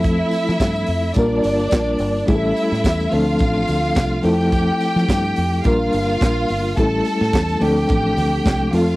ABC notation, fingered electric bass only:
X:1
M:4/4
L:1/16
Q:"Swing 16ths" 1/4=107
K:Dm
V:1 name="Fingered electric bass" clef=bass
F,,2 z F, G,,2 F,,2 B,,,2 G,,,2 B,,,2 G,,,2 | A,,,2 z A,, E,,2 D,,2 A,,,2 D,,2 C,,2 F,,2- | F,,2 z F, G,,2 F,,2 B,,,2 G,,,2 B,,,2 G,,,2 | A,,,2 z A,, E,,2 D,,2 A,,,2 D,,2 C,,2 F,,2 |]